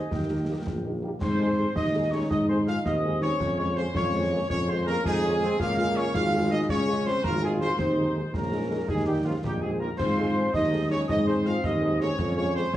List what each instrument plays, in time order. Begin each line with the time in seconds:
Already playing: trumpet section D#5, woodwind section G#5
0.11 tuba D#2, woodwind section A#4 G5, concert bass drum, snare
0.29 french horn section A#3 D#4 G4
0.48 trombone section G3 A#3, french horn section A#3 D#4 G4
0.67 tuba A#1, concert bass drum, snare
0.84 french horn section A#3 D#4 G4
1.03 trombone section G3 A#3, french horn section A#3 D#4 G4
1.21 tuba G#2, euphonium C4, woodwind section C5, trumpet section C5, piccolo C6, concert bass drum, snare, crash
1.40 french horn section G#3 D#4 G#4
1.58 french horn section G#3 D#4 G#4
1.75 tuba D#2, euphonium D#4, trombone section D#4, woodwind section D#5, trumpet section D#5, piccolo D#6, concert bass drum, snare
1.95 french horn section G#3 D#4 G#4
2.11 french horn section G#3 D#4 G#4, euphonium C#4, woodwind section C#5, trumpet section C#5, piccolo C#6
2.30 tuba G#2, euphonium D#4, woodwind section D#5, trumpet section D#5, piccolo D#6, concert bass drum, snare
2.49 french horn section G#3 D#4 G#4, euphonium C4, woodwind section C5, trumpet section C5, piccolo C6
2.67 french horn section G#3 D#4 G#4, euphonium F4, trumpet section F5, woodwind section F5, piccolo F6, snare
2.84 tuba D#2, trombone section C4, euphonium D#4, woodwind section D#5, trumpet section D#5, piccolo D#6, concert bass drum, snare
3.03 french horn section G#3 D#4 G#4
3.21 french horn section G#3 D#4 G#4, euphonium C#4, trumpet section C#5, woodwind section C#5, piccolo C#6, snare
3.40 tuba F2, trombone section C#4, concert bass drum, snare, crash
3.58 french horn section G#3 F4 G#4, euphonium C#4, woodwind section C#5, trumpet section C#5, piccolo C#6
3.76 french horn section G#3 F4 G#4, euphonium C4, woodwind section C5, trumpet section C5, piccolo C6
3.94 tuba F2, euphonium C#4, trombone section F4, woodwind section C#5, trumpet section C#5, piccolo C#6, concert bass drum, snare
4.13 trombone section G#3, french horn section G#3 F4 G#4
4.31 french horn section G#3 F4 G#4, trombone section A#3
4.49 tuba F2, euphonium C#4, trombone section C#4, woodwind section C#5, trumpet section C#5, piccolo C#6, concert bass drum, snare
4.67 french horn section G#3 F4 G#4, euphonium C4, woodwind section C5, trumpet section C5, piccolo C6
4.86 french horn section G#3 F4 G#4, euphonium A#3, woodwind section A#4, trumpet section A#4, piccolo A#5, snare
5.04 tuba F2, euphonium G#3, trombone section D#4, woodwind section G#4, trumpet section G#4, piccolo G#5, concert bass drum, snare
5.23 french horn section G#3 F4 G#4, trombone section C#4
5.42 french horn section G#3 F4 G#4, trombone section C4, snare
5.59 tuba C#2, trombone section A#3, euphonium F4, woodwind section F5, trumpet section F5, piccolo F6, concert bass drum, snare, crash
5.77 french horn section G#3 F4 G#4, euphonium F4, woodwind section F5, trumpet section F5, piccolo F6
5.96 french horn section G#3 F4 G#4, euphonium C#4, woodwind section C#5, trumpet section C#5, piccolo C#6
6.14 tuba G#1, trombone section G#3, euphonium F4, woodwind section F5, trumpet section F5, piccolo F6, concert bass drum, snare
6.33 french horn section G#3 F4 G#4
6.51 french horn section G#3 F4 G#4, euphonium D#4, trumpet section D#5, woodwind section D#5, piccolo D#6
6.69 tuba C#2, trombone section C#4, euphonium C#4, woodwind section C#5, trumpet section C#5, piccolo C#6, concert bass drum, snare
6.87 french horn section G#3 F4 G#4
7.06 french horn section G#3 F4 G#4, euphonium C4, woodwind section C5, trumpet section C5, piccolo C6, snare
7.24 tuba G#1, euphonium A#3, trombone section F4, woodwind section A#4, trumpet section A#4, piccolo A#5, concert bass drum, snare
7.41 french horn section G#3 F4 G#4, euphonium G#3, woodwind section G#4, trumpet section G#4, piccolo G#5
7.60 french horn section G#3 F4 G#4, euphonium C4, woodwind section C5, trumpet section C5, piccolo C6, snare
7.78 tuba D#2, euphonium C4, trombone section D#4, trumpet section C5, woodwind section C5, piccolo C6, concert bass drum, snare, crash
7.97 french horn section G#3 D#4 G#4
8.15 french horn section G#3 D#4 G#4
8.33 tuba A#1, euphonium A#3, trombone section C#4, trumpet section A#4, woodwind section A#4, piccolo A#5, concert bass drum, snare
8.51 french horn section G#3 D#4 G#4
8.70 french horn section G#3 D#4 G#4
8.88 tuba D#2, euphonium G#3, trombone section D#4, trumpet section G#4, woodwind section G#4, piccolo G#5, concert bass drum, snare
9.06 euphonium G3, french horn section A#3 D#4 G4, trumpet section G4, woodwind section G4, piccolo G5
9.25 euphonium F3, french horn section A#3 D#4 G4, trombone section C#4, trumpet section F4, woodwind section F4, piccolo F5
9.43 tuba A#1, euphonium G3, trombone section D#4, woodwind section G4, trumpet section G4, piccolo G5, concert bass drum, snare
9.62 euphonium G#3, french horn section A#3 D#4 G4, trombone section C4, trumpet section G#4, woodwind section G#4, piccolo G#5
9.80 euphonium A#3, french horn section A#3 D#4 G4, trombone section F4, trumpet section A#4, woodwind section A#4, piccolo A#5
9.98 tuba G#2, euphonium C4, trombone section F4, trumpet section C5, woodwind section C5, piccolo C6, concert bass drum, snare, crash
10.18 french horn section G#3 D#4 G#4
10.35 french horn section G#3 D#4 G#4
10.53 tuba D#2, trombone section D#4, euphonium D#4, woodwind section D#5, trumpet section D#5, piccolo D#6, concert bass drum, snare
10.73 french horn section G#3 D#4 G#4
10.91 french horn section G#3 D#4 G#4, euphonium C#4, woodwind section C#5, trumpet section C#5, piccolo C#6
11.08 tuba G#2, trombone section C4, euphonium D#4, woodwind section D#5, trumpet section D#5, piccolo D#6, concert bass drum, snare
11.27 french horn section G#3 D#4 G#4, euphonium C4, woodwind section C5, trumpet section C5, piccolo C6
11.45 french horn section G#3 D#4 G#4, euphonium F4, woodwind section F5, trumpet section F5, piccolo F6, snare
11.64 tuba D#2, euphonium D#4, woodwind section D#5, trumpet section D#5, piccolo D#6, concert bass drum, snare
11.81 french horn section G#3 D#4 G#4
12.00 french horn section G#3 D#4 G#4, euphonium C#4, woodwind section C#5, trumpet section C#5, piccolo C#6, snare
12.18 tuba F2, trombone section C#4, concert bass drum, snare, crash
12.36 french horn section G#3 F4 G#4, euphonium C#4, woodwind section C#5, trumpet section C#5, piccolo C#6
12.55 french horn section G#3 F4 G#4, euphonium C4, trumpet section C5, woodwind section C5, piccolo C6
12.73 trombone section A#3, woodwind section C#5, trumpet section C#5, concert bass drum, snare